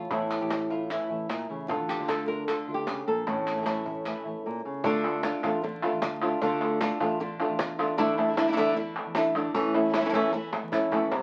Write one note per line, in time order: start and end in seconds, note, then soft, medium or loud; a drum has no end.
0.00 0.10 A2 medium
0.00 0.10 A3 soft
0.00 0.11 C#4 soft
0.00 0.10 E4 soft
0.00 0.12 F4 medium
0.10 0.20 A1 medium
0.10 1.30 A2 medium
0.10 0.30 E3 soft
0.10 0.30 A3 medium
0.10 0.31 C#4 medium
0.10 0.81 E4 medium
0.10 0.29 E4 medium
0.10 cajon bass medium
0.21 0.37 E2 medium
0.31 0.50 A3 soft
0.31 0.50 C#4 soft
0.31 0.50 E4 soft
0.31 cajon slap soft
0.31 clap medium
0.41 0.97 A1 medium
0.41 0.70 G4 medium
0.50 muted nylon-string guitar stroke soft
0.50 cajon slap medium
0.50 clap medium
0.70 0.89 A3 soft
0.70 0.90 C#4 soft
0.70 0.89 E4 soft
0.70 0.90 F4 medium
0.70 cajon bass medium
0.70 cajon slap soft
0.90 1.09 E3 medium
0.90 1.10 A3 medium
0.90 1.09 C#4 soft
0.90 1.69 E4 medium
0.90 1.08 E4 medium
0.90 clap medium
1.09 1.26 A1 medium
1.09 1.28 A3 soft
1.09 1.29 C#4 soft
1.09 1.29 E4 soft
1.29 1.50 A#2 soft
1.29 muted nylon-string guitar stroke soft
1.29 cajon slap medium
1.29 clap medium
1.49 1.71 A1 medium
1.49 1.70 C#3 soft
1.49 1.69 A3 soft
1.49 1.69 C#4 soft
1.49 1.68 E4 soft
1.68 1.77 D2 medium
1.68 2.87 D3 medium
1.68 2.28 F4 medium
1.68 muted nylon-string guitar stroke medium
1.68 cajon bass medium
1.79 1.95 A1 medium
1.89 2.08 G4 medium
1.89 clap medium
1.99 2.55 D2 medium
1.99 2.03 D3 soft
1.99 2.03 A3 soft
1.99 2.04 D4 soft
1.99 2.04 F4 soft
2.04 2.07 D3 soft
2.04 2.08 A3 soft
2.04 2.08 D4 soft
2.04 2.08 F4 medium
2.08 2.28 D3 medium
2.08 2.28 A3 medium
2.08 2.28 D4 medium
2.08 2.26 F4 medium
2.08 2.27 A4 medium
2.08 cajon slap medium
2.08 clap medium
2.28 2.47 A3 soft
2.28 2.48 D4 soft
2.28 2.47 F4 soft
2.28 2.47 A#4 medium
2.28 cajon bass medium
2.28 cajon slap soft
2.47 2.67 D3 medium
2.47 2.67 A3 medium
2.47 2.67 D4 medium
2.47 2.66 F4 medium
2.47 2.74 A4 medium
2.47 clap medium
2.67 2.84 D2 medium
2.67 2.86 A3 soft
2.67 2.87 D4 soft
2.67 2.87 F4 soft
2.74 3.07 G4 medium
2.87 3.07 C#3 soft
2.87 muted nylon-string guitar stroke soft
2.87 cajon slap medium
2.87 clap medium
3.07 3.27 A#1 medium
3.07 3.27 A#2 soft
3.07 4.85 A4 medium
3.27 3.35 A1 medium
3.27 4.46 A2 medium
3.27 4.06 A3 soft
3.27 3.66 C#4 soft
3.27 muted nylon-string guitar stroke medium
3.27 cajon bass medium
3.27 cajon slap soft
3.37 3.53 E2 medium
3.47 clap medium
3.52 3.56 E3 soft
3.52 3.56 A3 soft
3.52 3.57 C#4 soft
3.52 3.57 E4 soft
3.57 4.13 A1 medium
3.57 3.60 E3 soft
3.57 3.61 A3 soft
3.57 3.61 C#4 soft
3.57 3.62 E4 soft
3.61 3.65 E3 soft
3.61 3.65 A3 soft
3.61 3.65 C#4 soft
3.61 3.66 E4 medium
3.66 3.85 E3 medium
3.66 3.86 A3 medium
3.66 3.85 C#4 medium
3.66 4.83 C#4 soft
3.66 3.84 E4 medium
3.66 cajon slap medium
3.66 clap medium
3.85 4.05 A3 soft
3.85 4.05 C#4 soft
3.85 4.05 E4 soft
3.85 cajon bass medium
4.05 4.25 E3 medium
4.05 4.25 A3 medium
4.05 4.83 A3 soft
4.05 4.25 C#4 medium
4.05 4.24 E4 medium
4.05 clap medium
4.25 4.34 A1 medium
4.25 4.45 A3 soft
4.25 4.45 C#4 soft
4.25 4.44 E4 soft
4.45 4.65 A#2 soft
4.45 muted nylon-string guitar stroke soft
4.65 4.85 C#3 soft
4.84 5.33 D2 medium
4.84 5.03 D3 medium
4.84 5.23 D3 medium
4.84 5.04 A3 medium
4.84 5.23 A3 medium
4.84 5.04 D4 medium
4.84 5.24 D4 medium
4.84 5.24 F4 medium
4.84 5.02 F4 medium
4.84 cajon bass loud
5.04 5.23 A3 soft
5.04 5.24 D4 soft
5.04 5.23 F4 soft
5.23 5.43 D3 medium
5.23 5.43 A3 medium
5.23 5.43 D4 medium
5.23 5.43 F4 medium
5.23 muted nylon-string guitar stroke medium
5.23 cajon slap medium
5.23 clap medium
5.43 5.84 A1 medium
5.43 5.62 A3 soft
5.43 5.63 D4 soft
5.43 5.62 F4 soft
5.43 5.63 F4 medium
5.43 cajon bass medium
5.63 5.82 D3 medium
5.63 5.82 A3 medium
5.63 5.83 D4 medium
5.63 5.81 F4 medium
5.63 muted nylon-string guitar stroke medium
5.83 6.22 A3 soft
5.83 6.02 A3 soft
5.83 6.22 D4 soft
5.83 6.02 D4 soft
5.83 6.02 F4 soft
5.83 6.21 F4 soft
5.93 6.01 A1 medium
6.02 6.34 D2 medium
6.02 cajon slap loud
6.02 clap medium
6.22 6.41 A3 soft
6.22 6.41 D4 soft
6.22 6.41 F4 soft
6.22 6.41 F4 medium
6.41 6.90 D2 medium
6.41 6.80 D3 medium
6.41 6.60 D3 medium
6.41 6.80 A3 medium
6.41 6.61 A3 medium
6.41 6.81 D4 medium
6.41 6.61 D4 medium
6.41 6.81 F4 medium
6.41 6.60 F4 medium
6.41 cajon bass medium
6.41 cajon slap soft
6.61 6.80 A3 soft
6.61 6.80 D4 soft
6.61 6.80 F4 soft
6.81 7.00 D3 medium
6.81 7.00 A3 medium
6.81 7.00 D4 medium
6.81 6.99 F4 medium
6.81 muted nylon-string guitar stroke medium
6.81 cajon slap medium
6.81 clap medium
7.00 7.40 A1 medium
7.00 7.19 A3 soft
7.00 7.20 D4 soft
7.00 7.19 F4 soft
7.00 7.19 F4 medium
7.00 cajon bass medium
7.20 7.39 D3 medium
7.20 7.39 A3 medium
7.20 7.40 D4 medium
7.20 7.38 F4 medium
7.20 muted nylon-string guitar stroke medium
7.40 7.79 A3 soft
7.40 7.58 A3 soft
7.40 7.78 D4 soft
7.40 7.59 D4 soft
7.40 7.77 F4 medium
7.40 7.59 F4 soft
7.50 7.58 A1 medium
7.59 8.00 E2 medium
7.59 muted nylon-string guitar stroke medium
7.59 cajon bass medium
7.59 cajon slap medium
7.59 clap medium
7.78 7.97 A3 soft
7.78 7.98 A3 soft
7.78 7.97 D4 medium
7.78 7.98 D4 soft
7.78 7.97 F4 soft
7.78 7.98 F4 medium
7.97 8.46 A1 medium
7.97 8.17 D3 medium
7.97 8.17 A3 medium
7.97 8.17 D4 medium
7.97 8.16 E4 medium
7.97 muted nylon-string guitar stroke medium
7.97 cajon bass medium
7.97 cajon slap soft
8.17 8.37 A3 soft
8.17 8.36 D4 soft
8.17 8.36 E4 medium
8.28 8.31 D3 soft
8.28 8.32 A3 soft
8.28 8.32 D4 soft
8.28 8.32 E4 medium
8.32 8.36 D3 medium
8.32 8.36 A3 medium
8.32 8.37 D4 medium
8.32 8.37 E4 medium
8.37 8.56 D3 medium
8.37 8.56 A3 medium
8.37 8.47 A3 soft
8.37 8.48 D4 medium
8.37 8.57 D4 medium
8.37 8.48 E4 medium
8.37 8.55 E4 medium
8.37 cajon slap medium
8.37 clap medium
8.48 8.51 D3 soft
8.48 8.52 A3 medium
8.48 8.52 D4 medium
8.48 8.52 E4 medium
8.52 8.56 D3 medium
8.52 8.56 A3 medium
8.52 8.56 D4 medium
8.52 8.57 E4 medium
8.56 8.97 E2 medium
8.56 8.75 D3 medium
8.56 8.75 A3 medium
8.56 8.66 A3 soft
8.56 8.66 D4 soft
8.56 8.76 D4 medium
8.56 8.67 E4 soft
8.56 8.76 E4 medium
8.56 cajon bass medium
8.56 cajon slap soft
8.67 8.70 D3 soft
8.67 8.71 A3 soft
8.67 8.71 D4 soft
8.67 8.71 E4 soft
8.71 8.75 D3 soft
8.71 8.75 A3 medium
8.71 8.76 D4 medium
8.71 8.76 E4 medium
8.76 8.95 D3 medium
8.76 8.96 A3 medium
8.76 8.95 D4 medium
8.76 8.94 E4 medium
8.76 muted nylon-string guitar stroke medium
8.95 9.14 A3 soft
8.95 9.15 D4 soft
8.95 9.15 E4 soft
9.06 9.14 E2 medium
9.15 9.48 A1 medium
9.15 9.35 A3 soft
9.15 9.35 D4 soft
9.15 9.35 E4 soft
9.15 muted nylon-string guitar stroke medium
9.15 cajon slap medium
9.15 clap medium
9.35 9.54 D3 soft
9.35 9.54 A3 medium
9.35 9.55 D4 medium
9.35 9.55 E4 medium
9.35 clap soft
9.54 10.03 A1 medium
9.54 9.74 E3 medium
9.54 9.74 A3 medium
9.54 9.74 C#4 medium
9.54 9.73 E4 medium
9.54 muted nylon-string guitar stroke medium
9.54 cajon bass loud
9.54 cajon slap soft
9.75 9.94 A3 soft
9.75 9.94 C#4 soft
9.75 9.93 E4 medium
9.85 9.88 E3 soft
9.85 9.88 A3 soft
9.85 9.89 C#4 soft
9.85 9.89 E4 soft
9.89 9.92 E3 medium
9.89 9.93 A3 medium
9.89 9.93 C#4 medium
9.89 9.94 E4 medium
9.94 10.13 E3 medium
9.94 10.13 A3 medium
9.94 10.00 A3 soft
9.94 10.13 C#4 medium
9.94 10.00 C#4 soft
9.94 10.00 E4 medium
9.94 10.12 E4 medium
9.94 cajon slap medium
9.94 clap medium
10.00 10.03 E3 medium
10.00 10.04 A3 medium
10.00 10.05 C#4 soft
10.00 10.05 E4 medium
10.05 10.08 E3 medium
10.05 10.09 A3 medium
10.05 10.09 C#4 medium
10.05 10.09 E4 medium
10.09 10.13 E3 medium
10.09 10.13 A3 medium
10.09 10.14 C#4 medium
10.09 10.14 E4 medium
10.13 10.54 E2 medium
10.13 10.32 E3 medium
10.13 10.32 A3 medium
10.13 10.19 A3 soft
10.13 10.20 C#4 soft
10.13 10.33 C#4 medium
10.13 10.20 E4 soft
10.13 10.33 E4 medium
10.13 cajon bass medium
10.20 10.23 E3 soft
10.20 10.24 A3 soft
10.20 10.24 C#4 soft
10.20 10.25 E4 soft
10.25 10.28 E3 soft
10.25 10.28 A3 medium
10.25 10.29 C#4 soft
10.25 10.29 E4 medium
10.29 10.33 E3 medium
10.29 10.33 A3 medium
10.29 10.33 C#4 medium
10.29 10.33 E4 medium
10.29 cajon slap medium
10.33 10.53 E3 medium
10.33 10.53 A3 medium
10.33 10.53 C#4 medium
10.33 10.51 E4 medium
10.33 muted nylon-string guitar stroke medium
10.53 10.72 A3 soft
10.53 10.72 C#4 soft
10.53 10.72 E4 soft
10.53 cajon slap medium
10.63 10.71 E2 medium
10.72 11.05 A#1 medium
10.72 10.91 A3 soft
10.72 10.92 C#4 medium
10.72 10.92 E4 medium
10.72 muted nylon-string guitar stroke soft
10.72 cajon bass medium
10.72 clap medium
10.92 11.11 E3 medium
10.92 11.11 A3 medium
10.92 11.12 C#4 medium
10.92 11.12 E4 medium
10.92 cajon bass medium
11.11 11.22 C2 medium
11.11 11.22 C3 medium
11.11 muted nylon-string guitar stroke medium
11.11 cajon bass medium
11.11 cajon slap soft